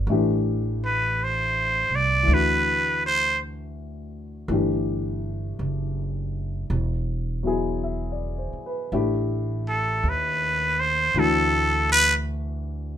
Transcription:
Already playing: grand piano D5
0.07 upright bass A1, grand piano E3 A3 D4
0.11 grand piano G4
0.85 muted trumpet B4
1.23 muted trumpet C5
1.89 upright bass C2
1.95 muted trumpet D5
2.23 grand piano E3 A3
2.28 upright bass D2, grand piano D4
2.34 grand piano F#4, muted trumpet B4
3.06 muted trumpet C5
4.48 upright bass G1, grand piano E3 A3 D4
4.53 grand piano G4
5.59 upright bass F#1
6.70 upright bass E1
7.43 grand piano B2 F#3 E4
7.47 grand piano G#4
7.84 grand piano E5
8.12 grand piano D5
8.38 grand piano C5
8.53 muted upright bass stroke
8.66 grand piano B4
8.92 upright bass A1, grand piano A3 D4 E4 G4
9.69 muted trumpet A4
10.03 upright bass D#2
10.09 muted trumpet B4
10.80 muted trumpet C5
11.14 upright bass D2, grand piano E3 A3 D4 F#4
11.19 muted trumpet A4
11.92 muted trumpet B4

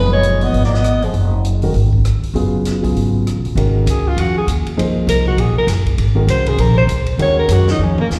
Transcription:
Already playing: upright bass F#1, upright piano A#2 F3 D#4 G#4 B4, bass clarinet G#3, alto saxophone B4
0.13 bass clarinet G#3, alto saxophone C#5
0.23 closed hi-hat
0.41 bass clarinet B3, alto saxophone D#5, open hi-hat
0.53 upright bass G#1, open hi-hat
0.64 bass clarinet A#3, alto saxophone D5, snare
0.73 bass clarinet B3, alto saxophone D#5, snare
0.84 cross-stick, closed hi-hat
1.02 bass clarinet F3, alto saxophone G#4, open hi-hat
1.13 upright bass F#1, open hi-hat
1.45 closed hi-hat
1.62 upright piano D#3 G#3 C#4 F#4 A#4, open hi-hat
1.74 upright bass G#1, open hi-hat
1.93 kick
2.05 cross-stick, closed hi-hat
2.23 muted upright bass stroke, open hi-hat
2.34 upright bass F#1, upright piano C#3 F#3 B3 F4 G#4, open hi-hat
2.65 snare, closed hi-hat
2.82 upright piano C#3 F#3 B3 F4 G#4, kick, open hi-hat
2.95 upright bass G#1, open hi-hat
3.27 cross-stick, closed hi-hat
3.36 upright bass B1
3.45 upright bass F#1, open hi-hat
3.55 upright bass G#1, upright piano D#3 G#3 C#4 F#4 A#4, ride
3.86 upright bass C#2, hi-hat pedal, ride
3.91 alto saxophone G#4
4.08 alto saxophone F4
4.17 upright bass F2, alto saxophone F#4, ride
4.38 alto saxophone G#4
4.47 upright bass D#2, hi-hat pedal, ride
4.67 ride
4.77 upright bass C#2, upright piano F3 A#3 D#4 G#4 C5, ride
4.95 muted upright bass stroke
5.07 upright bass C2, alto saxophone A#4, hi-hat pedal, ride
5.28 alto saxophone F#4
5.37 upright bass A#1, alto saxophone G#4, ride
5.55 alto saxophone A#4, muted upright bass stroke
5.67 upright bass F#1, snare, hi-hat pedal, ride
5.86 kick, ride
5.98 upright bass G#1, ride
6.15 upright piano D#3 G#3 C#4 F#4 A#4
6.27 upright bass C2, alto saxophone C5, hi-hat pedal, ride
6.46 alto saxophone G#4, ride
6.57 upright bass A#1, alto saxophone A#4, ride
6.78 alto saxophone C5
6.87 upright bass C#2, hi-hat pedal, ride
7.05 muted upright bass stroke, ride
7.17 upright bass D#2, upright piano D#3 G#3 C#4 F#4 A#4, ride
7.22 alto saxophone C#5
7.39 alto saxophone A#4
7.48 upright bass F#2, hi-hat pedal, ride
7.52 alto saxophone F#4
7.67 alto saxophone D#4, snare
7.78 upright bass F2, high tom
7.83 alto saxophone C#4
7.98 alto saxophone A#3, high tom
8.09 upright bass D#2, snare, hi-hat pedal

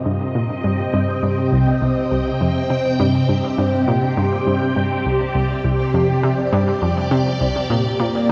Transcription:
Already playing: string machine C3 C4 F4 G4 D#5
0.06 synth arpeggio sound G2
0.25 string machine G5
0.35 synth arpeggio sound A#2
0.64 synth arpeggio sound G2
0.94 synth arpeggio sound G2
1.23 synth arpeggio sound G2
1.53 synth arpeggio sound C2
1.82 synth arpeggio sound C2
2.11 synth arpeggio sound C2
2.41 synth arpeggio sound F2
2.70 synth arpeggio sound C3
3.00 synth arpeggio sound G2
3.29 synth arpeggio sound G2
3.58 synth arpeggio sound G2
3.88 synth arpeggio sound A#2
4.17 synth arpeggio sound G2, string machine D5
4.47 synth arpeggio sound G2
4.76 synth arpeggio sound G2
5.06 synth arpeggio sound C2
5.35 synth arpeggio sound C2
5.64 synth arpeggio sound C2
5.94 synth arpeggio sound F2
6.23 synth arpeggio sound C3
6.53 synth arpeggio sound G2
6.82 synth arpeggio sound F2
7.11 synth arpeggio sound C3
7.41 synth arpeggio sound C2
7.70 synth arpeggio sound A#2, string machine A#2
7.81 string machine A#3
7.98 synth arpeggio sound A#2, string machine F4

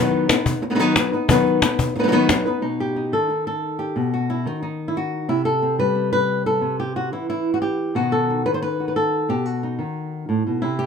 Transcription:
Already playing: nylon-string guitar D#3 F#3 B3 D#4 B4
0.29 nylon-string guitar B3 D#4 B4, cajon slap
0.46 cajon bass
0.62 muted nylon-string guitar stroke
0.70 nylon-string guitar F#3 B3 D#4 B4
0.75 nylon-string guitar F#3 B3 D#4 B4
0.79 nylon-string guitar D#3 F#3 B3 D#4 B4
0.96 nylon-string guitar F#3 B3 D#4 B4, cajon slap
1.12 nylon-string guitar B3 D#4 B4, cajon slap
1.28 nylon-string guitar D#3 F#3 B3 D#4 B4, cajon bass
1.46 cajon slap
1.62 nylon-string guitar B3 D#4 B4, cajon slap
1.79 cajon bass
1.95 nylon-string guitar B3 D#4, muted nylon-string guitar stroke, cajon slap
2.00 nylon-string guitar F#3 B3 D#4 B4
2.04 nylon-string guitar F#3 B4
2.08 nylon-string guitar D#3 B3 D#4 B4
2.12 nylon-string guitar F#3 B3 D#4 B4
2.29 nylon-string guitar F#3 B3 D#4 B4, cajon bass, cajon slap
2.45 nylon-string guitar B3 D#4 B4, cajon slap
2.62 nylon-string guitar B2 D#4
2.80 nylon-string guitar G4
2.96 nylon-string guitar D#4
3.12 nylon-string guitar D#3 A4
3.30 nylon-string guitar D#4
3.47 nylon-string guitar A4
3.79 nylon-string guitar G4
3.96 nylon-string guitar B2
4.14 nylon-string guitar F#4
4.30 nylon-string guitar E4
4.46 nylon-string guitar D#3 D#4
4.63 nylon-string guitar D#4
4.88 nylon-string guitar E4
4.97 nylon-string guitar F#4
5.29 nylon-string guitar C3 E4
5.45 nylon-string guitar A4
5.62 nylon-string guitar C4
5.79 nylon-string guitar G3 B4
5.95 nylon-string guitar C4
6.13 nylon-string guitar B4
6.46 nylon-string guitar A4
6.62 nylon-string guitar C3
6.80 nylon-string guitar G4
6.96 nylon-string guitar F#4
7.12 nylon-string guitar E3 E4
7.30 nylon-string guitar E4
7.54 nylon-string guitar F#4
7.62 nylon-string guitar G4
7.95 nylon-string guitar B2 D#3 D#4 F#4
8.12 nylon-string guitar A4
8.30 nylon-string guitar D#4
8.46 nylon-string guitar D#3 B4
8.54 nylon-string guitar C5
8.62 nylon-string guitar B4
8.80 nylon-string guitar F#4
8.88 nylon-string guitar B4
8.96 nylon-string guitar A4
9.29 nylon-string guitar B2 G4
9.46 nylon-string guitar F#4
9.63 nylon-string guitar D#4
9.79 nylon-string guitar D#3
10.29 nylon-string guitar A2
10.47 nylon-string guitar B2
10.62 nylon-string guitar C3 E4
10.79 nylon-string guitar G4

